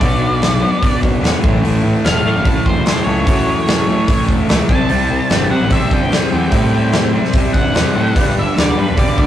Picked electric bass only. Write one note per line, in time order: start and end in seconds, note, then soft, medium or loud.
0.01 0.63 B1 loud
1.03 1.19 F#1 medium
1.23 1.31 E1 loud
1.44 1.59 A1 medium
1.65 1.80 A1 medium
1.85 1.92 A1 loud
2.05 2.21 E1 medium
2.26 2.34 A2 loud
2.37 2.52 F#1 medium
2.66 2.81 E1 medium
3.07 3.22 C#2 medium
3.27 3.88 F#2 loud
4.28 4.44 E1 medium
4.50 4.58 C#2 medium
4.69 4.85 C2 medium
4.90 5.06 C2 medium
5.10 5.18 C2 medium
5.31 5.46 G1 medium
5.51 5.59 C3 loud
5.62 5.77 A1 medium
5.91 6.07 G1 medium
6.33 6.48 E2 medium
6.52 7.14 A2 loud
7.54 7.70 G1 medium
7.75 7.83 E2 loud
7.95 8.11 A2 medium
8.16 8.32 G1 loud
8.37 8.45 G1 loud
8.58 8.73 D2 medium
8.78 8.86 G2 loud
8.90 9.04 E1 medium
9.18 9.27 D2 medium